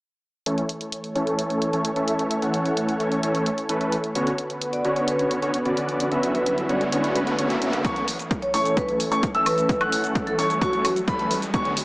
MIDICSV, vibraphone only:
0, 0, Header, 1, 2, 480
1, 0, Start_track
1, 0, Tempo, 461538
1, 480, Time_signature, 4, 2, 24, 8
1, 12321, End_track
2, 0, Start_track
2, 0, Title_t, "Vibraphone"
2, 0, Program_c, 0, 11
2, 4919, Note_on_c, 0, 74, 91
2, 5256, Note_off_c, 0, 74, 0
2, 5278, Note_on_c, 0, 71, 91
2, 5442, Note_off_c, 0, 71, 0
2, 6599, Note_on_c, 0, 71, 90
2, 6763, Note_off_c, 0, 71, 0
2, 6961, Note_on_c, 0, 74, 85
2, 7441, Note_off_c, 0, 74, 0
2, 8760, Note_on_c, 0, 73, 94
2, 9096, Note_off_c, 0, 73, 0
2, 9121, Note_on_c, 0, 71, 92
2, 9284, Note_off_c, 0, 71, 0
2, 9840, Note_on_c, 0, 71, 88
2, 9917, Note_off_c, 0, 71, 0
2, 9960, Note_on_c, 0, 71, 71
2, 10037, Note_off_c, 0, 71, 0
2, 10680, Note_on_c, 0, 69, 93
2, 10843, Note_off_c, 0, 69, 0
2, 11041, Note_on_c, 0, 66, 94
2, 11401, Note_off_c, 0, 66, 0
2, 12321, End_track
0, 0, End_of_file